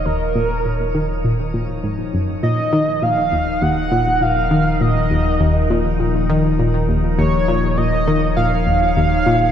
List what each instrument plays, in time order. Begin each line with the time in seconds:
Already playing: sub bass D#1, ambient pad D#3 F3 D#4 C#5
0.05 synth arpeggio sound D#2, analog synth lead A#4
0.35 synth arpeggio sound A#2
0.65 synth arpeggio sound A#2
0.95 synth arpeggio sound D#3
1.24 synth arpeggio sound A#2
1.54 synth arpeggio sound A#2
1.84 synth arpeggio sound G#2
2.14 synth arpeggio sound F#2
2.43 sub bass D#1, synth arpeggio sound A#2, ambient pad A#4, analog synth lead D#5
2.73 synth arpeggio sound D#3
3.02 synth arpeggio sound A#2, analog synth lead F5
3.32 synth arpeggio sound D#2
3.62 synth arpeggio sound D#2, analog synth lead F#5
3.92 synth arpeggio sound A#2
4.21 synth arpeggio sound A#2, analog synth lead F5
4.51 synth arpeggio sound D#3
4.81 synth arpeggio sound A#2, analog synth lead D#5
5.11 synth arpeggio sound D#2
5.40 synth arpeggio sound D#2
5.70 synth arpeggio sound A#2
6.00 synth arpeggio sound A#2
6.30 synth arpeggio sound D#3
6.59 synth arpeggio sound A#2
6.89 synth arpeggio sound D#2
7.18 synth arpeggio sound D#2, analog synth lead C#5, ambient pad C#5
7.48 synth arpeggio sound A#2
7.77 synth arpeggio sound A#2, analog synth lead D#5
8.08 synth arpeggio sound D#3
8.36 synth arpeggio sound A#2, analog synth lead F5
8.67 synth arpeggio sound D#2
8.97 synth arpeggio sound D#2
9.26 synth arpeggio sound A#2